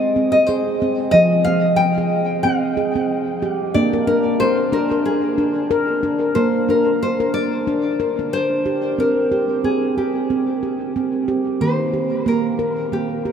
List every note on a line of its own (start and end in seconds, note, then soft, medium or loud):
0.00 1.10 G#3 medium
0.00 0.31 D#5 medium
0.16 0.49 C4 medium
0.32 0.46 D#5 medium
0.46 0.81 G#4 medium
0.46 0.98 C5 medium
0.82 1.14 C4 medium
1.11 3.71 F3 medium
1.11 1.47 G#4 medium
1.11 1.44 D#5 loud
1.44 1.79 C4 medium
1.44 1.76 F5 loud
1.76 2.43 G5 medium
1.98 2.30 G#4 medium
2.43 2.77 C4 medium
2.43 3.38 F5 medium
2.77 2.95 G#4 medium
2.96 3.28 C4 medium
3.42 3.75 G4 medium
3.74 6.33 A#3 medium
3.74 3.94 D4 medium
3.74 4.09 D5 medium
3.93 4.08 A#4 medium
4.07 4.40 D4 medium
4.07 4.41 A#4 medium
4.40 4.73 A#4 medium
4.40 4.74 C5 medium
4.72 4.91 D4 medium
4.72 5.05 A#4 medium
4.91 5.24 A#4 medium
5.05 6.00 G#4 medium
5.38 5.71 D4 medium
5.71 6.04 A#4 medium
6.03 6.36 D4 medium
6.35 8.94 A#3 medium
6.35 6.69 A#4 medium
6.35 6.70 C5 loud
6.69 7.02 D4 medium
6.69 7.00 A#4 medium
7.03 7.33 C5 medium
7.20 7.53 A#4 medium
7.34 8.61 D5 medium
7.67 8.00 D4 medium
8.00 8.18 A#4 medium
8.19 8.52 D4 medium
8.33 8.95 C5 loud
8.66 8.99 G4 medium
8.98 9.31 C4 medium
8.98 9.64 A#4 medium
9.32 9.64 G4 medium
9.64 9.97 C4 medium
9.64 9.97 G#4 medium
9.98 10.30 G4 medium
9.98 11.25 G4 medium
10.30 10.63 C4 medium
10.63 10.96 G4 medium
10.96 11.29 C4 medium
11.28 11.61 G4 medium
11.61 13.32 D#3 medium
11.61 11.94 A#3 medium
11.61 12.27 C5 medium
11.93 12.27 G4 medium
12.26 12.59 A#3 medium
12.26 12.95 A#4 medium
12.59 12.92 A#4 medium
12.92 13.25 A#3 medium
12.92 13.32 G4 medium
13.25 13.32 G4 medium